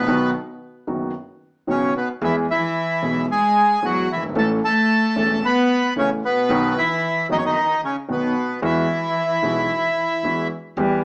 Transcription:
Already playing: B2 B3 B4
0.01 A#1
0.07 B1 B2 D#3 F#3 B3 F#4
0.87 F#1 F#2 D#3 F#3 B3 F#4
1.67 B1 B2 C#3 D#3 F#3 B3 C#4 F#4 C#5
1.96 B2 B3 B4
2.22 E2 E3 G#3 B3 E4 G#4 E5
2.50 E3 E4 E5
3.02 B1 B2 E3 G#3 B3 G#4
3.31 G#3 G#4 G#5
3.82 E2 E3 F#3 G#3 B3 F#4 G#4 F#5
4.12 E3 E4 E5
4.16 F#1
4.23 G1
4.29 G#1
4.35 A1 A2 E3 A3 C#4 A4 A5
4.64 A3 A4 A5
5.16 E1 E2 E3 A3 C#4 A4
5.45 B3 B4 B5
5.96 A1 A2 C#3 E3 A3 C#4 A4 C#5
6.25 B2 B3 B4
6.49 B1 B2 D#3 F#3 B3 F#4
6.78 E3 E4 E5
7.29 F#1 F#2 D#3 F#3 B3 D#4 F#4 D#5
7.37 C#3 C#5
7.45 D#3 D#4 D#5
7.84 C#3 C#4 C#5
8.08 B1 B2 D#3 F#3 B3 F#4 B4
8.62 E2 E3 G#3 B3 E4 F#4 E5
9.42 B1 B2 E3 G#3 B3 F#4
10.23 E2 E3 G#3 B3 F#4
10.77 E2 E3 G3 B3 G4

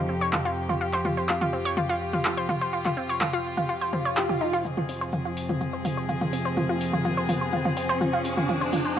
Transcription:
Already playing: F2 C3 F3 D#4 G4
0.09 C4
0.21 C#5
0.33 F4, clap, mid tom
0.45 F4
0.69 F4, mid tom
0.81 F4
0.93 C5, clap
1.05 F4, mid tom
1.17 C5
1.29 F4, clap
1.41 F4, mid tom
1.53 C4
1.65 C#5
1.77 F4, mid tom
1.89 F4
2.13 F4, mid tom
2.25 F4, clap
2.37 C5
2.49 F4, mid tom
2.61 C5
2.73 F4
2.85 F4, clap, mid tom
2.97 C4
3.09 C#5
3.21 F4, clap, mid tom
3.33 F4
3.57 F4, mid tom
3.69 F4, swell
3.81 C5
3.93 C4, mid tom
4.05 C#5
4.17 G4, clap
4.29 G4, mid tom
4.41 D#4
4.53 F4
4.65 F2 C3 F3 C4 F4 G#4, mid tom, riser, shaker
4.77 F4, mid tom
4.89 C4, open hi-hat, shaker
5.01 C5, shaker
5.12 F4, mid tom, shaker
5.25 F4, shaker
5.37 open hi-hat, shaker
5.49 F4, mid tom, shaker
5.61 F4, mid tom, shaker
5.73 C5, shaker
5.85 F4, open hi-hat, mid tom, shaker
5.97 C5, shaker
6.09 F4, mid tom, shaker
6.21 F4, mid tom, shaker
6.33 C4, open hi-hat, shaker
6.44 C5, shaker
6.57 F4, mid tom, shaker
6.69 F4
6.81 open hi-hat, shaker
6.93 F4, mid tom, shaker
7.04 F4, mid tom, shaker
7.17 C5, shaker
7.28 F4, open hi-hat, mid tom, shaker
7.40 C5, shaker
7.52 F4, mid tom, shaker
7.65 F4, mid tom, shaker
7.77 C4, open hi-hat, shaker
7.89 C5, shaker
8.01 F4, mid tom, shaker
8.13 F4, shaker
8.24 open hi-hat, shaker
8.37 F4, mid tom, shaker
8.49 F4, mid tom, shaker
8.61 C5
8.72 F4, open hi-hat, mid tom, shaker
8.85 C5, shaker

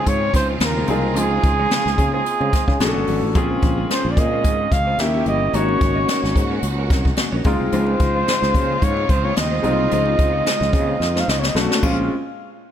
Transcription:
Already playing: C#3 C4 D#4 F4 G#4
0.06 G#2 G#3 D#4 F4 C5 C#5, kick, closed hi-hat
0.22 muted clean electric guitar stroke
0.34 C#2 C5, muted clean electric guitar stroke, kick, snare, closed hi-hat
0.50 G#3 D#4 F4 C5
0.60 D#2 A#4, snare, closed hi-hat, muted conga, high conga
0.75 G#3 D#4 F4 C5, muted conga
0.87 C2 G#3 C4 D#4 F4 G#4 A#4 C5, closed hi-hat, high conga, low conga
1.05 muted clean electric guitar stroke
1.15 C#2 G#3 D#4 F4 G#4 C5, closed hi-hat, low conga
1.31 muted clean electric guitar stroke, muted conga
1.43 C#2, muted clean electric guitar stroke, kick, closed hi-hat
1.59 G#3 D#4 F4 C#5
1.71 G#3 D#4 F4 C5, snare, closed hi-hat
1.85 C#2, muted clean electric guitar stroke, snare, muted conga
1.98 C#3, muted clean electric guitar stroke, kick, closed hi-hat, high conga
2.13 G#3 D#4 F4 G#4 C5
2.26 muted clean electric guitar stroke, closed hi-hat
2.40 C#3 G#3 D#4 F4 C5, muted conga
2.52 G#3 D#4 F4 C5, kick, snare, closed hi-hat
2.67 C#3, muted clean electric guitar stroke, kick
2.79 B1 D3 A3 B3 C#4 D4 F#4 G#4, muted clean electric guitar stroke, snare, closed hi-hat, muted conga, high conga
2.88 A4
2.94 G1 A3 D4 F#4 C#5
3.07 G#1 A3 D4 F#4 C#5, open hi-hat, high conga, low conga
3.22 A1, muted clean electric guitar stroke
3.34 A#1 C#3 G#3 A#3 C4 C#4 F4 G#4 C5, kick, closed hi-hat, muted conga, low conga
3.50 muted clean electric guitar stroke
3.62 A#1, muted clean electric guitar stroke, kick, closed hi-hat
3.77 G#3 C#4 F4 C5
3.89 G#3 C#4 F4 C5, snare, closed hi-hat
4.04 A#1, muted clean electric guitar stroke, muted conga
4.11 D5
4.17 A#2 D#5, muted clean electric guitar stroke, kick, closed hi-hat, high conga
4.31 G#3 C#4 F4 C5
4.44 G#2 G#3 C#4 F4 C5, kick, closed hi-hat, muted conga
4.59 muted clean electric guitar stroke
4.72 C#2 F5, muted clean electric guitar stroke, kick, snare, closed hi-hat
4.87 G#3 C#4 F4 C5
4.98 D#2 D#3 A#3 C#4 E4 G4 E5, snare, closed hi-hat, high conga
5.14 A#3 E4 G4 C#5, muted conga
5.26 G1 A#3 E4 G4 C#5 D#5, closed hi-hat, high conga, low conga
5.41 muted clean electric guitar stroke
5.53 G#1 G#3 A#3 C#4 D#4 F#4 A#4 C#5, closed hi-hat, muted conga, low conga
5.68 muted clean electric guitar stroke, muted conga
5.81 G#1, kick, closed hi-hat
5.95 C#4 F#4 A#4 D#5
6.08 C#4 F#4 A#4 C#5, snare, closed hi-hat, muted conga
6.23 G#1, muted clean electric guitar stroke, snare
6.36 G#2, muted clean electric guitar stroke, kick, closed hi-hat, high conga
6.51 C#4 F#4 A#4 C#5
6.63 C#2, muted clean electric guitar stroke, closed hi-hat
6.78 C#4 F#4 A#4 C#5
6.90 C2 C#4 F#4 A#4 C#5, kick, snare, closed hi-hat
7.05 muted clean electric guitar stroke, kick
7.17 muted clean electric guitar stroke, snare, closed hi-hat, muted conga, high conga
7.32 A#1 C#4 F#4 A#4 C#5
7.44 C#2 C#3 G#3 C4 D#4 F4 C5, kick, closed hi-hat, high conga, low conga
7.60 C2, muted clean electric guitar stroke
7.72 C#2 G#3 D#4 F4 C5, closed hi-hat, muted conga, low conga
7.87 muted clean electric guitar stroke, muted conga
8.00 C#2, muted clean electric guitar stroke, kick, closed hi-hat
8.15 G#3 D#4 F4 C5
8.28 G#3 D#4 F4 C5, snare, closed hi-hat, muted conga
8.42 C#2, muted clean electric guitar stroke, snare
8.54 C#3, kick, closed hi-hat, high conga
8.68 G#3 D#4 F4 C5
8.82 G#2 G#3 D#4 F4 C5 C#5, kick, closed hi-hat
8.96 muted clean electric guitar stroke, muted conga
9.09 C#2 C5, muted clean electric guitar stroke, kick, closed hi-hat
9.24 G#3 D#4 F4 C5 C#5
9.36 D#2 D#5, muted clean electric guitar stroke, snare, closed hi-hat, muted conga, high conga
9.51 G#3 D#4 F4 C5
9.62 C2 G#3 C4 D#4 F4 C5, closed hi-hat, high conga, low conga
9.91 C#2 G#3 D#4 F4 C5, closed hi-hat, muted conga, low conga
10.06 muted clean electric guitar stroke, muted conga
10.18 C#2, muted clean electric guitar stroke, kick, closed hi-hat
10.33 G#3 D#4 F4 C#5
10.45 G#3 D#4 F4 C5, snare, closed hi-hat, muted conga
10.60 C#2, muted clean electric guitar stroke, snare, low conga
10.73 C#3, kick, closed hi-hat, high conga
10.87 G#3 D#4 F4 C5
11.00 F2, muted clean electric guitar stroke, snare
11.16 G#3 D#4 F4 C5, snare
11.20 F5
11.28 C#2 G#3 D#4 F4 C5 D#5, snare
11.39 C#5, snare
11.44 D#5, muted clean electric guitar stroke
11.55 B1 D3 A3 B3 C#4 D4 F#4, snare, muted conga, high conga
11.71 A3 D4 F#4 C#5, snare
11.80 A#1 A#2 G#3 C4 C#4 F4 C5 F5, kick, crash, high conga

